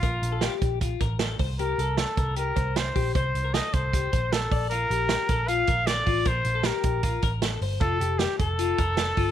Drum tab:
HH |xxxxxxxo|xxxxxxxo|xxxxxxxo|xxxxxxxo|
SD |--o---o-|--o---o-|--o---o-|--o---o-|
BD |o--ooo-o|---o-o-o|o--ooo-o|---o-o-o|

HH |xxxxxxxo|xxxxxxxo|
SD |--o---o-|--o---o-|
BD |o--ooo--|o--o-o-o|